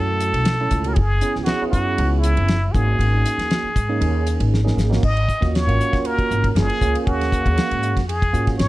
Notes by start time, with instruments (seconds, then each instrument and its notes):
Already playing: upright bass F#2, tine electric piano A3 C#4 E4 F#4, muted trumpet A4
0.20 hi-hat pedal, ride
0.33 upright bass B1, ride
0.45 snare, ride
0.60 tine electric piano A3 C#4 E4 A4
0.71 upright bass C#2, kick, hi-hat pedal, ride
0.84 tine electric piano A3 C#4 E4 F#4, ride
0.88 muted trumpet A#4
0.94 upright bass F#1, muted trumpet G#4, kick, ride
1.21 tine electric piano B3 C#4 E4 G#4, hi-hat pedal, ride
1.36 upright bass C#2, snare
1.44 tine electric piano B3 C#4 E4 G#4, muted trumpet F#4, snare, ride
1.61 tine electric piano B3 C#4 E4 G#4, muted upright bass stroke
1.70 upright bass F#2, muted trumpet F#4, kick, hi-hat pedal, ride
1.98 upright bass C#2, ride
2.19 muted trumpet E4
2.23 hi-hat pedal, ride
2.37 upright bass F#1, ride
2.48 snare, ride
2.72 upright bass G#1, tine electric piano A#3 C#4 D#4 F#4, muted trumpet G#4, kick, hi-hat pedal, ride
2.99 upright bass G#1, ride
3.25 hi-hat pedal, ride
3.38 upright bass D#2, snare, ride
3.51 snare, ride
3.63 muted upright bass stroke
3.76 upright bass G#2, kick, hi-hat pedal, ride
3.89 tine electric piano A#3 C#4 D#4 G#4
4.01 upright bass D#2, ride
4.27 hi-hat pedal, ride
4.40 upright bass G#1, ride
4.54 snare
4.64 tine electric piano A#3 C#4 D#4 G#4, snare
4.77 upright bass G#1, snare, hi-hat pedal
4.89 tine electric piano A#3 C#4 D#4 F#4, snare
5.03 upright bass G#1, muted trumpet D#5, kick, crash
5.17 ride
5.29 kick, hi-hat pedal
5.41 upright bass D#2, tine electric piano A#3 C#4 F4 F#4, kick, snare, ride
5.55 muted trumpet C#5, snare, ride
5.67 upright bass G#1, tine electric piano A#3 C#4 F4 F#4, ride
5.80 hi-hat pedal
5.92 upright bass D#2, tine electric piano A#3 C#4 F4 F#4, kick, snare, ride
6.05 muted trumpet A#4, ride
6.19 kick, ride
6.31 upright bass G#1, hi-hat pedal
6.44 kick, ride
6.55 upright bass F#1, tine electric piano A#3 C#4 F4 G#4, muted trumpet G#4, snare, ride
6.70 ride
6.81 upright bass C#2, tine electric piano A#3 C#4 F4 G#4, kick, hi-hat pedal
6.95 ride
7.06 upright bass D#2, tine electric piano A#3 C#4 G#4 F5, muted trumpet F#4, kick, ride
7.21 snare, ride
7.32 kick, hi-hat pedal
7.46 upright bass D#2, kick, ride
7.58 snare, ride
7.71 upright bass G#2, ride
7.83 hi-hat pedal
7.97 upright bass F2, kick, snare, ride
8.09 muted trumpet G#4, ride
8.22 kick, ride
8.33 upright bass G#2, tine electric piano A#3 C#4 F4 F#4, hi-hat pedal
8.47 kick, snare, ride
8.58 upright bass G#1, muted trumpet C#5, snare, ride